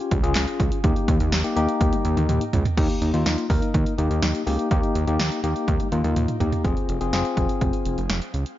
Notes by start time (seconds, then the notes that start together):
Already playing: C#4 F4 G4
0.11 C#2, kick, closed hi-hat
0.23 C#2 C#4 F4 G#4, closed hi-hat
0.35 C#2, snare, clap, closed hi-hat
0.48 closed hi-hat
0.60 C#2, kick, closed hi-hat
0.72 closed hi-hat
0.84 D#2 A#3 D#4 G4, kick, closed hi-hat
0.96 closed hi-hat
1.08 D#2, kick, closed hi-hat
1.20 D#2, closed hi-hat
1.32 D#2, snare, closed hi-hat
1.44 A#3 D#4 G4, closed hi-hat
1.56 D#2 A#3 D#4 G4, closed hi-hat
1.69 closed hi-hat
1.81 D#2, kick, closed hi-hat, high tom
1.93 closed hi-hat, high tom
2.05 D#2, closed hi-hat
2.17 D#2, closed hi-hat, mid tom
2.29 D#2, closed hi-hat, mid tom
2.41 closed hi-hat
2.53 C#2, closed hi-hat, floor tom
2.65 closed hi-hat, floor tom
2.77 D#2 A#3 D#4 G4, kick, closed hi-hat, crash
2.90 closed hi-hat
3.02 D#2, closed hi-hat
3.14 D#2 A#3 D#4 F4, closed hi-hat
3.26 D#2, snare, closed hi-hat
3.38 closed hi-hat
3.50 D#2 A#3 D#4 A#4, kick, open hi-hat
3.62 closed hi-hat
3.74 D#2, kick, closed hi-hat
3.86 closed hi-hat
3.98 D#2 A#3 D#4 G4, closed hi-hat
4.10 D#2, closed hi-hat
4.22 D#2, snare, closed hi-hat
4.35 closed hi-hat
4.47 C#2 A#3 D#4 G4, open hi-hat
4.59 closed hi-hat
4.71 D#2 A#3 D#4 G4, kick, closed hi-hat
4.83 closed hi-hat
4.95 D#2, closed hi-hat
5.07 D#2 A#3 D#4 G4, closed hi-hat
5.19 D#2, snare, closed hi-hat
5.32 closed hi-hat
5.44 D#2 A#3 D#4 G4, closed hi-hat
5.56 closed hi-hat
5.68 D#2, kick, closed hi-hat, high tom
5.80 closed hi-hat, high tom
5.92 D#2 A#3 D#4 F4, closed hi-hat
6.04 D#2, closed hi-hat, mid tom
6.16 D#2, closed hi-hat, mid tom
6.28 closed hi-hat, mid tom
6.40 D#2 A#3 D#4 G4, closed hi-hat, floor tom
6.52 closed hi-hat, floor tom
6.65 F1 C4 F4 G#4, kick, closed hi-hat
6.77 closed hi-hat
6.89 F1, closed hi-hat
7.01 F1 C4 F4 G#4, closed hi-hat
7.13 F1 C4 F4 G#4, snare, closed hi-hat
7.25 closed hi-hat
7.37 F1, kick, closed hi-hat
7.49 closed hi-hat
7.61 F1, kick, closed hi-hat
7.73 closed hi-hat
7.85 F1, closed hi-hat
7.98 F1, closed hi-hat
8.10 F1, snare, closed hi-hat
8.22 closed hi-hat
8.34 C#2, closed hi-hat
8.46 closed hi-hat